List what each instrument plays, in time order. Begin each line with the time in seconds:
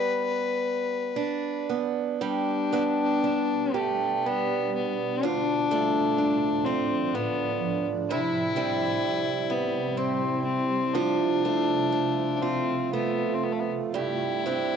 Already playing: steel-string acoustic guitar G3 B3, fiddle B4
1.16 steel-string acoustic guitar D4
1.69 steel-string acoustic guitar B3
2.21 ambient pad B2 G3 D4, steel-string acoustic guitar G3 G4, fiddle D4
2.72 steel-string acoustic guitar B3 D4 G4
3.24 steel-string acoustic guitar D4
3.74 fiddle A3, steel-string acoustic guitar G4
4.26 fiddle B3, steel-string acoustic guitar D4
4.75 fiddle B3
5.23 steel-string acoustic guitar D2 F4, ambient pad A2 F3, fiddle D4
5.71 steel-string acoustic guitar A3 D4 F4
6.18 steel-string acoustic guitar D4
6.65 fiddle C4, steel-string acoustic guitar F4
7.15 fiddle B3, steel-string acoustic guitar D4
8.09 ambient pad C3 G3 E4, steel-string acoustic guitar C3 E4, fiddle E4
8.56 steel-string acoustic guitar G3 C4 E4
9.50 fiddle B3, steel-string acoustic guitar E4
9.97 fiddle C4, steel-string acoustic guitar C4
10.44 fiddle C4
10.94 steel-string acoustic guitar F3 F4, ambient pad A3 F4, fiddle D4
11.45 steel-string acoustic guitar A3 F4
11.93 steel-string acoustic guitar A3
12.37 fiddle D4
12.42 fiddle C4, steel-string acoustic guitar F4
12.93 steel-string acoustic guitar A3, fiddle B3
13.34 fiddle C4
13.43 fiddle B3
13.52 fiddle A3
13.60 fiddle B3
13.94 steel-string acoustic guitar G2 G4, ambient pad D4, fiddle E4
13.98 ambient pad G3
14.46 steel-string acoustic guitar C4 D4 G4